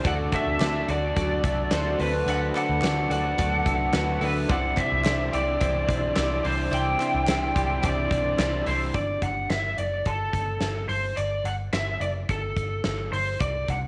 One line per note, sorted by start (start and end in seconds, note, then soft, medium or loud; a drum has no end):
0.00 0.32 D3 medium
0.00 0.10 E3 medium
0.00 0.10 C4 medium
0.00 0.60 D4 medium
0.00 0.26 F#4 medium
0.00 0.10 G4 medium
0.04 0.28 D2 medium
0.04 2.26 D3 medium
0.04 0.32 A3 medium
0.04 0.33 D4 medium
0.04 0.32 F#4 medium
0.04 0.26 A4 medium
0.04 0.31 A4 medium
0.04 0.26 D5 loud
0.04 0.14 F#5 medium
0.04 kick loud
0.04 closed hi-hat medium
0.32 2.53 A3 medium
0.32 0.60 D4 soft
0.32 0.54 F#4 medium
0.32 0.60 F#4 medium
0.32 0.60 A4 medium
0.32 0.55 A4 medium
0.32 0.55 D5 medium
0.32 0.90 E5 medium
0.32 kick medium
0.32 clap medium
0.32 closed hi-hat medium
0.47 0.58 D2 medium
0.60 0.83 D2 medium
0.60 0.88 D3 medium
0.60 0.88 A3 medium
0.60 0.74 C4 medium
0.60 0.89 D4 medium
0.60 0.82 F#4 medium
0.60 0.87 F#4 medium
0.60 0.82 A4 medium
0.60 0.86 A4 medium
0.60 0.82 D5 medium
0.60 snare loud
0.60 clap medium
0.60 closed hi-hat loud
0.74 1.43 D4 soft
0.88 1.11 D2 loud
0.88 1.15 D4 soft
0.88 1.70 F#4 medium
0.88 1.10 F#4 medium
0.88 1.16 F#4 medium
0.88 1.16 A4 soft
0.88 1.10 A4 medium
0.88 1.10 D5 medium
0.88 2.04 D5 medium
0.88 closed hi-hat medium
1.15 1.39 D2 loud
1.15 3.37 F#3 medium
1.15 1.43 A3 medium
1.15 1.44 D4 medium
1.15 1.38 F#4 medium
1.15 1.42 F#4 medium
1.15 1.38 A4 medium
1.15 1.42 A4 medium
1.15 1.38 D5 loud
1.15 kick medium
1.15 closed hi-hat medium
1.43 1.66 C2 medium
1.43 1.99 D4 medium
1.43 1.71 D4 soft
1.43 1.71 F#4 soft
1.43 1.66 F#4 medium
1.43 1.71 A4 medium
1.43 1.66 A4 medium
1.43 1.66 E5 medium
1.43 kick medium
1.43 closed hi-hat medium
1.71 1.94 D2 medium
1.71 1.99 D3 medium
1.71 1.99 A3 medium
1.71 1.99 D4 medium
1.71 3.09 F#4 medium
1.71 1.99 F#4 medium
1.71 1.94 F#4 medium
1.71 1.98 A4 medium
1.71 1.94 A4 medium
1.71 1.94 C5 loud
1.71 snare loud
1.71 clap medium
1.71 closed hi-hat medium
1.99 2.22 D2 medium
1.99 2.13 C4 medium
1.99 2.27 D4 soft
1.99 2.21 F#4 medium
1.99 2.27 F#4 medium
1.99 2.21 A4 medium
1.99 2.27 A4 medium
1.99 2.21 B4 medium
1.99 2.26 B4 medium
1.99 open hi-hat medium
2.13 2.81 D4 medium
2.26 2.49 D2 loud
2.26 4.48 D3 medium
2.26 2.55 D3 medium
2.26 2.55 A3 medium
2.26 2.55 D4 medium
2.26 2.49 F#4 medium
2.26 2.55 F#4 medium
2.26 2.49 A4 medium
2.26 2.54 A4 medium
2.26 2.49 B4 loud
2.26 2.37 F#5 loud
2.26 closed hi-hat medium
2.54 4.55 A3 medium
2.54 2.82 D4 soft
2.54 2.76 F#4 medium
2.54 2.82 F#4 medium
2.54 2.76 A4 medium
2.54 2.83 A4 medium
2.54 2.77 D5 medium
2.54 3.11 F#5 loud
2.54 clap medium
2.54 closed hi-hat medium
2.69 2.80 D2 medium
2.81 3.05 D2 medium
2.81 3.10 D3 medium
2.81 3.11 A3 medium
2.81 3.65 D4 medium
2.81 3.11 D4 medium
2.81 3.04 F#4 medium
2.81 3.10 F#4 medium
2.81 3.04 A4 medium
2.81 3.09 A4 medium
2.81 3.04 D5 medium
2.81 snare loud
2.81 clap medium
2.81 closed hi-hat loud
3.10 3.33 D2 medium
3.10 3.37 D4 soft
3.10 3.32 F#4 medium
3.10 3.93 F#4 medium
3.10 3.38 F#4 soft
3.10 3.38 A4 medium
3.10 3.32 A4 medium
3.10 3.32 D5 medium
3.10 4.26 F#5 medium
3.10 closed hi-hat medium
3.38 3.61 D2 loud
3.38 4.55 F#3 medium
3.38 3.66 A3 medium
3.38 3.66 D4 medium
3.38 3.60 F#4 medium
3.38 3.66 F#4 medium
3.38 3.60 A4 medium
3.38 3.65 A4 medium
3.38 3.60 D5 medium
3.38 kick medium
3.38 closed hi-hat medium
3.65 3.89 C2 medium
3.65 4.21 D4 medium
3.65 3.93 D4 soft
3.65 3.88 F#4 medium
3.65 3.93 F#4 soft
3.65 3.87 A4 medium
3.65 3.93 A4 medium
3.65 3.88 E5 medium
3.65 kick medium
3.65 closed hi-hat medium
3.93 4.17 D2 loud
3.93 4.21 D3 medium
3.93 4.21 A3 loud
3.93 4.22 D4 loud
3.93 4.15 F#4 medium
3.93 4.55 F#4 medium
3.93 4.21 F#4 loud
3.93 4.15 A4 medium
3.93 4.20 A4 loud
3.93 4.16 B4 loud
3.93 snare loud
3.93 clap loud
3.93 closed hi-hat medium
4.21 4.44 D2 loud
4.21 4.80 D4 medium
4.21 4.49 D4 soft
4.21 4.43 F#4 medium
4.21 4.50 F#4 soft
4.21 4.43 A4 medium
4.21 4.49 A4 medium
4.21 4.52 B4 medium
4.21 4.43 E5 medium
4.21 open hi-hat medium
4.49 4.72 C2 loud
4.49 6.71 C3 medium
4.49 4.77 C3 medium
4.49 4.77 E3 medium
4.49 4.77 G3 medium
4.49 4.77 D4 medium
4.49 4.71 E4 medium
4.49 4.76 E4 medium
4.49 4.71 C5 medium
4.49 4.75 C5 medium
4.49 4.71 D5 loud
4.49 4.79 F#5 loud
4.49 kick loud
4.49 closed hi-hat medium
4.76 5.04 G3 soft
4.76 6.99 C4 medium
4.76 5.04 D4 soft
4.76 4.98 E4 medium
4.76 5.04 E4 medium
4.76 5.05 C5 medium
4.76 4.99 C5 medium
4.76 4.99 D5 medium
4.76 5.34 E5 medium
4.76 kick medium
4.76 clap medium
4.76 closed hi-hat medium
4.92 5.03 C2 medium
5.04 5.28 C2 loud
5.04 5.33 C3 medium
5.04 5.32 E3 medium
5.04 5.32 G3 medium
5.04 5.88 D4 medium
5.04 5.32 D4 medium
5.04 5.26 E4 medium
5.04 5.31 E4 medium
5.04 5.26 C5 medium
5.04 5.30 C5 medium
5.04 5.27 D5 medium
5.04 snare loud
5.04 clap medium
5.04 closed hi-hat medium
5.31 5.56 C2 loud
5.31 5.59 G3 soft
5.31 5.59 D4 medium
5.31 5.60 E4 soft
5.31 5.54 E4 medium
5.31 6.16 G4 medium
5.31 5.60 C5 medium
5.31 5.54 C5 medium
5.31 6.48 D5 medium
5.31 5.54 E5 medium
5.31 closed hi-hat medium
5.60 5.84 C2 loud
5.60 7.82 E3 medium
5.60 5.88 G3 medium
5.60 5.88 D4 medium
5.60 5.82 E4 medium
5.60 5.88 E4 medium
5.60 5.82 C5 medium
5.60 5.87 C5 medium
5.60 5.82 E5 medium
5.60 kick medium
5.60 closed hi-hat medium
5.87 6.11 B1 medium
5.87 6.15 G3 soft
5.87 6.44 D4 medium
5.87 6.15 D4 soft
5.87 6.09 E4 medium
5.87 6.16 E4 medium
5.87 6.10 C5 medium
5.87 6.16 C5 medium
5.87 6.10 D5 medium
5.87 kick medium
5.87 closed hi-hat medium
6.16 6.40 C2 loud
6.16 6.44 C3 medium
6.16 6.44 E3 medium
6.16 6.44 G3 medium
6.16 6.44 D4 medium
6.16 6.38 E4 medium
6.16 6.43 E4 loud
6.16 7.55 G4 medium
6.16 6.38 C5 medium
6.16 6.42 C5 loud
6.16 6.38 E5 medium
6.16 snare loud
6.16 clap loud
6.16 closed hi-hat medium
6.43 6.67 C2 loud
6.43 6.71 G3 soft
6.43 7.28 D4 medium
6.43 6.72 D4 soft
6.43 6.66 E4 medium
6.43 6.72 E4 medium
6.43 6.72 C5 medium
6.43 6.66 C5 medium
6.43 6.74 C5 medium
6.43 6.66 D5 medium
6.43 open hi-hat medium
6.71 6.94 C2 loud
6.71 7.00 C3 medium
6.71 8.95 C3 medium
6.71 7.00 E3 medium
6.71 7.00 G3 medium
6.71 7.00 D4 medium
6.71 6.93 E4 medium
6.71 6.99 E4 medium
6.71 6.93 C5 medium
6.71 6.98 C5 medium
6.71 6.93 D5 loud
6.71 7.87 G5 loud
6.71 closed hi-hat medium
6.99 7.27 G3 medium
6.99 9.00 C4 medium
6.99 7.27 D4 medium
6.99 7.21 E4 medium
6.99 7.27 E4 medium
6.99 7.21 C5 medium
6.99 7.27 C5 medium
6.99 7.21 D5 medium
6.99 clap medium
6.99 closed hi-hat medium
7.14 7.25 C2 medium
7.27 7.51 C2 loud
7.27 7.55 C3 medium
7.27 7.55 E3 medium
7.27 7.56 G3 medium
7.27 8.11 D4 medium
7.27 7.55 D4 medium
7.27 7.50 E4 medium
7.27 7.54 E4 medium
7.27 7.50 C5 medium
7.27 7.54 C5 medium
7.27 7.49 E5 medium
7.27 snare loud
7.27 clap medium
7.27 closed hi-hat loud
7.55 7.78 C2 loud
7.55 7.81 G3 soft
7.55 7.83 D4 soft
7.55 7.77 E4 medium
7.55 7.83 E4 medium
7.55 8.38 G4 medium
7.55 7.83 C5 medium
7.55 7.77 C5 medium
7.55 7.77 D5 medium
7.55 kick medium
7.55 closed hi-hat medium
7.82 8.06 C2 loud
7.82 9.00 E3 medium
7.82 8.11 G3 medium
7.82 8.11 D4 medium
7.82 8.04 E4 medium
7.82 8.10 E4 medium
7.82 8.04 C5 medium
7.82 8.10 C5 medium
7.82 8.05 D5 loud
7.82 8.64 D5 medium
7.82 kick medium
7.82 closed hi-hat medium
8.10 8.33 B1 medium
8.10 8.38 G3 soft
8.10 8.67 D4 medium
8.10 8.38 D4 soft
8.10 8.32 E4 medium
8.10 8.39 E4 medium
8.10 8.32 C5 medium
8.10 8.39 C5 medium
8.10 8.32 D5 medium
8.10 kick loud
8.10 closed hi-hat medium
8.37 8.61 C2 medium
8.37 8.66 C3 medium
8.37 8.67 E3 medium
8.37 8.67 G3 medium
8.37 8.67 D4 medium
8.37 8.60 E4 medium
8.37 8.66 E4 medium
8.37 9.50 G4 medium
8.37 8.60 C5 medium
8.37 8.65 C5 medium
8.37 8.60 E5 medium
8.37 snare loud
8.37 clap loud
8.37 closed hi-hat medium
8.66 8.90 C2 loud
8.66 8.96 G3 soft
8.66 9.50 D4 medium
8.66 8.95 D4 medium
8.66 8.88 E4 medium
8.66 8.95 E4 medium
8.66 8.88 C5 medium
8.66 8.94 C5 medium
8.66 8.93 C5 medium
8.66 8.88 E5 loud
8.66 open hi-hat medium
8.94 9.17 G1 medium
8.94 9.23 D5 medium
8.94 kick loud
8.94 closed hi-hat medium
9.22 9.45 G1 medium
9.22 9.51 F#5 medium
9.22 kick medium
9.22 closed hi-hat medium
9.50 9.73 G1 medium
9.50 9.79 E5 medium
9.50 snare loud
9.50 closed hi-hat medium
9.78 10.01 F#1 medium
9.78 10.07 D5 medium
9.78 closed hi-hat medium
10.06 10.29 G1 medium
10.06 10.88 A4 medium
10.06 kick medium
10.06 closed hi-hat medium
10.33 10.57 G1 medium
10.33 kick medium
10.33 closed hi-hat medium
10.61 10.84 G1 medium
10.61 snare medium
10.61 closed hi-hat medium
10.89 11.12 G1 loud
10.89 11.18 C5 medium
10.89 open hi-hat medium
11.17 11.41 G1 medium
11.17 11.46 D5 medium
11.17 closed hi-hat medium
11.44 11.68 G1 medium
11.44 11.53 F#5 medium
11.44 closed hi-hat medium
11.73 11.96 G1 medium
11.73 12.01 E5 medium
11.73 snare medium
11.73 closed hi-hat medium
12.01 12.24 F#1 medium
12.01 12.09 D5 medium
12.01 closed hi-hat medium
12.29 12.52 G1 loud
12.29 13.12 A4 medium
12.29 kick medium
12.29 closed hi-hat medium
12.56 12.80 G1 medium
12.56 kick medium
12.56 closed hi-hat medium
12.84 13.08 G1 medium
12.84 snare loud
12.84 closed hi-hat medium
13.12 13.35 G1 medium
13.12 13.42 C5 medium
13.12 open hi-hat medium
13.40 13.64 C2 medium
13.40 13.70 D5 medium
13.40 kick loud
13.40 closed hi-hat medium
13.68 13.88 C2 medium
13.68 13.77 F#5 medium
13.68 kick medium
13.68 closed hi-hat medium